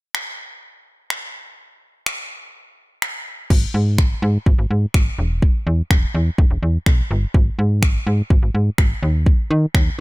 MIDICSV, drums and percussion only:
0, 0, Header, 1, 2, 480
1, 0, Start_track
1, 0, Tempo, 480000
1, 1585, Time_signature, 4, 2, 24, 8
1, 10001, End_track
2, 0, Start_track
2, 0, Title_t, "Drums"
2, 146, Note_on_c, 9, 26, 107
2, 246, Note_off_c, 9, 26, 0
2, 1103, Note_on_c, 9, 26, 113
2, 1203, Note_off_c, 9, 26, 0
2, 2064, Note_on_c, 9, 26, 109
2, 2164, Note_off_c, 9, 26, 0
2, 3022, Note_on_c, 9, 26, 110
2, 3122, Note_off_c, 9, 26, 0
2, 3503, Note_on_c, 9, 36, 111
2, 3503, Note_on_c, 9, 49, 87
2, 3603, Note_off_c, 9, 36, 0
2, 3603, Note_off_c, 9, 49, 0
2, 3984, Note_on_c, 9, 26, 105
2, 3984, Note_on_c, 9, 36, 103
2, 4084, Note_off_c, 9, 26, 0
2, 4084, Note_off_c, 9, 36, 0
2, 4463, Note_on_c, 9, 36, 109
2, 4563, Note_off_c, 9, 36, 0
2, 4943, Note_on_c, 9, 26, 109
2, 4943, Note_on_c, 9, 36, 107
2, 5043, Note_off_c, 9, 26, 0
2, 5043, Note_off_c, 9, 36, 0
2, 5424, Note_on_c, 9, 36, 107
2, 5524, Note_off_c, 9, 36, 0
2, 5905, Note_on_c, 9, 36, 103
2, 5906, Note_on_c, 9, 26, 111
2, 6005, Note_off_c, 9, 36, 0
2, 6006, Note_off_c, 9, 26, 0
2, 6384, Note_on_c, 9, 36, 109
2, 6484, Note_off_c, 9, 36, 0
2, 6864, Note_on_c, 9, 26, 113
2, 6864, Note_on_c, 9, 36, 102
2, 6964, Note_off_c, 9, 26, 0
2, 6964, Note_off_c, 9, 36, 0
2, 7344, Note_on_c, 9, 36, 109
2, 7444, Note_off_c, 9, 36, 0
2, 7825, Note_on_c, 9, 36, 101
2, 7826, Note_on_c, 9, 26, 106
2, 7925, Note_off_c, 9, 36, 0
2, 7926, Note_off_c, 9, 26, 0
2, 8304, Note_on_c, 9, 36, 115
2, 8404, Note_off_c, 9, 36, 0
2, 8783, Note_on_c, 9, 26, 113
2, 8784, Note_on_c, 9, 36, 102
2, 8883, Note_off_c, 9, 26, 0
2, 8884, Note_off_c, 9, 36, 0
2, 9264, Note_on_c, 9, 36, 109
2, 9364, Note_off_c, 9, 36, 0
2, 9745, Note_on_c, 9, 36, 109
2, 9746, Note_on_c, 9, 26, 109
2, 9845, Note_off_c, 9, 36, 0
2, 9846, Note_off_c, 9, 26, 0
2, 10001, End_track
0, 0, End_of_file